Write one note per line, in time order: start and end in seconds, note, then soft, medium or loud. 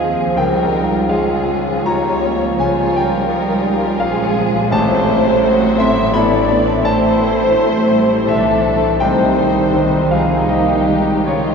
0.00 0.37 D#2 soft
0.00 0.33 F3 soft
0.00 0.37 F3 medium
0.00 1.08 F3 soft
0.00 2.06 F3 soft
0.00 0.36 C4 medium
0.00 0.33 F4 soft
0.00 0.84 F4 soft
0.00 0.35 G#4 soft
0.00 0.37 G#4 medium
0.00 0.12 C5 soft
0.00 0.33 C5 soft
0.00 0.40 D#5 medium
0.00 0.40 F5 medium
0.13 0.40 C5 soft
0.35 2.55 C#2 medium
0.35 3.96 C#2 medium
0.35 2.57 C#3 soft
0.35 4.67 F3 soft
0.35 1.09 G3 medium
0.35 0.72 C#4 soft
0.35 4.67 F4 medium
0.35 1.08 F4 soft
0.35 1.09 A#4 medium
0.35 1.05 G5 medium
0.62 1.08 C#5 soft
0.72 1.08 D#4 soft
0.85 2.34 F4 soft
1.09 1.86 F3 medium
1.09 1.84 G#3 soft
1.09 2.31 G#3 soft
1.09 1.84 C#4 soft
1.09 1.85 F4 medium
1.09 1.84 G#4 medium
1.09 2.10 C#5 soft
1.09 1.82 F5 medium
1.60 2.03 G3 soft
1.85 2.59 G3 medium
1.85 2.60 A#3 medium
1.85 2.57 C#4 medium
1.85 2.23 D#4 medium
1.85 4.67 F4 soft
1.85 2.57 C#5 medium
1.85 4.68 C#5 soft
1.85 2.56 A#5 medium
2.11 2.82 C#5 soft
2.24 2.60 C#4 medium
2.36 3.06 F4 soft
2.58 4.74 C#3 medium
2.58 3.29 F3 medium
2.58 2.96 G#3 medium
2.58 3.29 C#4 medium
2.58 3.28 F4 medium
2.58 2.94 C#5 medium
2.58 2.93 G#5 medium
2.83 3.30 C#5 soft
2.94 3.98 G3 medium
2.94 3.99 A#4 medium
2.94 3.96 G5 medium
3.07 4.45 F4 soft
3.29 3.64 F3 medium
3.29 4.00 D#4 soft
3.29 4.68 F4 medium
3.29 4.22 C#5 soft
3.65 4.00 G3 medium
3.76 4.16 G3 soft
3.98 4.70 A#1 medium
3.98 4.72 F3 medium
3.98 4.74 G#3 soft
3.98 4.71 G#3 medium
3.98 4.34 C#4 medium
3.98 4.72 G#4 medium
3.98 4.68 F5 medium
4.23 4.74 C#5 medium
4.34 6.14 C3 medium
4.46 4.74 F4 medium
4.70 8.28 A1 medium
4.70 6.81 A1 medium
4.70 6.83 A2 medium
4.70 5.07 A3 medium
4.70 8.97 A3 medium
4.70 5.77 A3 medium
4.70 9.01 E4 medium
4.70 5.43 E4 medium
4.70 5.77 C5 medium
4.70 5.75 A5 medium
4.95 8.85 C5 soft
5.06 5.42 G3 medium
5.18 6.59 E4 soft
5.43 6.15 F#3 medium
5.43 6.57 A3 soft
5.43 5.80 F#4 medium
5.66 6.12 A3 medium
5.78 6.14 C4 medium
5.78 6.14 E4 medium
5.78 6.14 E5 medium
5.78 6.13 C6 medium
5.89 6.30 G3 soft
6.13 6.50 E3 medium
6.13 7.79 A3 soft
6.13 6.85 B3 medium
6.13 6.86 D4 medium
6.13 8.97 E4 soft
6.13 8.24 E4 medium
6.13 8.97 A4 soft
6.13 6.85 D5 medium
6.13 6.81 B5 medium
6.51 7.55 E3 medium
6.61 7.32 E4 soft
6.85 9.03 A2 medium
6.85 8.25 A3 medium
6.85 7.21 C4 medium
6.85 8.28 C5 medium
6.85 8.24 A5 medium
7.09 10.99 C6 medium
7.22 7.55 C4 medium
7.33 8.75 E4 soft
7.56 7.93 F#3 medium
7.56 8.97 C4 medium
7.81 8.27 A3 soft
7.94 8.29 G3 medium
8.04 8.45 G3 soft
8.28 9.00 B1 medium
8.28 9.01 E3 medium
8.28 9.04 A3 medium
8.28 8.64 A3 medium
8.28 9.01 D4 medium
8.28 9.01 A4 medium
8.28 8.97 E5 medium
8.65 9.01 A3 medium
8.76 9.04 E4 soft
8.99 11.22 C2 medium
8.99 11.55 C2 medium
8.99 11.55 D#3 medium
8.99 9.74 G3 medium
8.99 10.10 G3 medium
8.99 9.74 C4 medium
8.99 9.72 D#4 medium
8.99 10.09 C5 medium
8.99 10.06 G5 medium
9.03 11.55 D#3 medium
9.03 11.55 D#4 medium
9.25 11.55 D#5 soft
9.50 10.99 D#4 soft
9.73 10.95 D#3 soft
9.73 10.49 C4 soft
9.73 11.23 D#4 medium
9.73 10.10 D#4 soft
10.11 10.49 F3 medium
10.11 11.24 D#4 soft
10.11 10.49 G#4 medium
10.11 10.46 F5 medium
10.24 10.67 F3 soft
10.47 11.27 D#3 medium
10.47 11.55 G3 soft
10.47 10.86 A#3 medium
10.47 11.55 D#4 soft
10.47 11.27 G4 medium
10.47 11.22 D#5 medium
10.85 11.25 G#3 soft
11.00 11.55 D#4 soft
11.25 11.55 C#3 medium
11.25 11.55 G3 soft
11.25 11.55 D#4 soft
11.25 11.55 F4 medium
11.25 11.55 G4 soft
11.25 11.55 C#5 medium